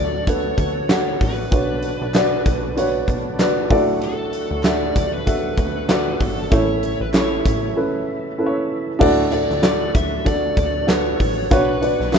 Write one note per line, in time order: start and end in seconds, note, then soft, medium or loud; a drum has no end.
0.00 0.54 D2 loud
0.00 1.53 A2 medium
0.00 6.47 F#3 medium
0.00 1.49 A3 medium
0.00 0.27 D4 medium
0.00 1.47 D4 medium
0.00 0.28 F#4 medium
0.00 1.49 F#4 medium
0.00 0.28 A4 medium
0.00 0.27 D5 medium
0.00 1.53 D5 medium
0.27 0.78 D4 medium
0.27 0.78 F#4 medium
0.27 0.78 A4 medium
0.27 0.78 B4 medium
0.27 1.23 C#5 medium
0.27 kick medium
0.27 closed hi-hat medium
0.58 1.16 D2 medium
0.58 kick medium
0.58 closed hi-hat medium
0.89 1.40 D4 medium
0.89 1.40 F#4 medium
0.89 1.40 A4 medium
0.89 1.40 F#5 medium
0.89 snare loud
0.89 clap medium
0.89 closed hi-hat medium
1.21 1.50 A1 medium
1.21 3.05 B4 medium
1.21 kick medium
1.21 open hi-hat medium
1.51 1.97 B1 loud
1.51 3.69 D3 medium
1.51 3.69 B3 medium
1.51 2.02 D4 medium
1.51 3.69 D4 medium
1.51 2.02 F#4 medium
1.51 2.03 B4 medium
1.51 2.03 C#5 medium
1.51 kick loud
1.51 closed hi-hat medium
1.83 closed hi-hat medium
2.01 2.43 B1 medium
2.14 2.65 D4 medium
2.14 2.65 F#4 medium
2.14 2.65 B4 medium
2.14 2.65 D5 medium
2.14 snare loud
2.14 clap medium
2.14 closed hi-hat medium
2.46 3.04 B1 medium
2.46 kick medium
2.46 closed hi-hat medium
2.76 3.27 D4 medium
2.76 3.28 F#4 medium
2.76 3.28 B4 medium
2.76 3.28 C#5 medium
2.76 closed hi-hat medium
3.08 3.72 B1 loud
3.08 kick medium
3.08 closed hi-hat medium
3.39 3.69 D4 medium
3.39 3.69 F#4 medium
3.39 3.71 B4 medium
3.39 3.70 D5 medium
3.39 snare loud
3.39 clap medium
3.39 closed hi-hat medium
3.70 4.46 D2 loud
3.70 4.60 A2 medium
3.70 8.98 A3 medium
3.70 4.47 D4 medium
3.70 4.47 F#4 medium
3.70 6.50 F#4 medium
3.70 4.47 A4 medium
3.70 4.48 D5 medium
3.70 kick loud
3.70 open hi-hat medium
4.02 4.67 A4 medium
4.02 closed hi-hat medium
4.33 closed hi-hat medium
4.51 4.92 D2 medium
4.63 5.14 D4 medium
4.63 5.15 F#4 medium
4.63 5.15 A4 medium
4.63 snare loud
4.63 clap medium
4.63 closed hi-hat medium
4.65 5.13 D5 medium
4.65 5.15 E5 medium
4.65 clap medium
4.96 5.54 D2 loud
4.96 kick medium
4.96 closed hi-hat medium
5.14 6.24 B4 medium
5.26 5.77 D4 medium
5.26 5.77 F#4 medium
5.26 5.77 A4 medium
5.26 5.78 E5 medium
5.26 kick medium
5.26 closed hi-hat medium
5.58 6.16 D2 medium
5.58 kick medium
5.58 closed hi-hat medium
5.88 6.39 D4 medium
5.88 6.40 F#4 medium
5.88 6.40 A4 medium
5.88 6.40 D5 medium
5.88 snare loud
5.88 clap medium
5.88 closed hi-hat medium
6.20 6.50 G1 medium
6.20 6.53 A4 medium
6.20 kick medium
6.20 open hi-hat medium
6.50 6.97 A1 loud
6.50 7.41 A2 medium
6.50 8.99 C#3 medium
6.50 7.41 E3 medium
6.50 8.99 E3 medium
6.50 7.01 C#4 medium
6.50 7.02 E4 medium
6.50 8.99 E4 medium
6.50 7.02 A4 medium
6.50 7.02 C#5 medium
6.50 kick loud
6.50 closed hi-hat medium
6.83 closed hi-hat medium
7.00 7.42 A1 medium
7.00 7.07 B4 medium
7.13 7.64 C#4 medium
7.13 7.64 E4 medium
7.13 7.65 A4 medium
7.13 7.65 C#5 medium
7.13 snare loud
7.13 clap medium
7.13 closed hi-hat medium
7.15 7.78 C#5 medium
7.15 clap medium
7.46 7.74 A1 medium
7.46 kick medium
7.46 closed hi-hat medium
7.75 8.26 C#4 medium
7.75 8.27 E4 medium
7.75 8.27 A4 medium
7.75 8.27 B4 medium
8.38 8.89 C#4 medium
8.38 8.89 E4 medium
8.38 8.90 A4 medium
8.38 8.47 B4 medium
8.46 8.93 C#5 medium
8.99 9.46 D2 loud
8.99 9.90 A2 medium
8.99 11.48 F#3 medium
8.99 11.48 A3 medium
8.99 9.25 D4 loud
8.99 12.19 D4 medium
8.99 9.26 F#4 medium
8.99 12.19 F#4 medium
8.99 9.26 A4 medium
8.99 9.26 D5 loud
8.99 kick loud
8.99 crash medium
9.31 9.57 D4 medium
9.31 9.57 F#4 medium
9.31 9.58 A4 medium
9.31 9.91 D5 medium
9.31 9.58 D5 medium
9.31 closed hi-hat medium
9.50 9.92 D2 loud
9.50 snare soft
9.62 10.13 D4 medium
9.62 10.14 F#4 medium
9.62 10.14 A4 medium
9.62 10.14 D5 medium
9.62 snare loud
9.62 clap medium
9.62 closed hi-hat medium
9.95 10.53 D2 medium
9.95 10.26 E5 loud
9.95 kick medium
9.95 closed hi-hat medium
10.25 10.76 D4 medium
10.25 10.76 F#4 medium
10.25 10.77 A4 medium
10.25 10.77 D5 medium
10.25 10.85 D5 medium
10.25 kick medium
10.25 closed hi-hat medium
10.57 11.16 D2 loud
10.57 kick medium
10.57 closed hi-hat medium
10.87 11.38 D4 medium
10.87 11.38 F#4 medium
10.87 11.39 A4 medium
10.87 11.39 B4 medium
10.87 11.48 C#5 medium
10.87 snare loud
10.87 clap medium
10.87 closed hi-hat medium
11.20 11.49 A1 medium
11.20 kick medium
11.20 open hi-hat medium
11.50 11.96 B1 loud
11.50 12.19 B3 medium
11.50 11.76 D4 medium
11.50 11.76 F#4 medium
11.50 11.76 B4 medium
11.50 12.19 B4 medium
11.50 12.19 C#5 medium
11.50 11.77 C#5 loud
11.50 kick loud
11.50 closed hi-hat medium
11.81 12.07 D4 medium
11.81 12.07 F#4 medium
11.81 12.07 B4 medium
11.81 12.08 D5 medium
11.81 closed hi-hat medium
12.00 12.19 B1 medium
12.00 snare soft
12.12 12.19 D4 medium
12.12 12.19 F#4 medium
12.12 12.19 B4 medium
12.12 12.19 E5 medium
12.12 snare loud
12.12 clap medium
12.12 closed hi-hat medium
12.15 clap medium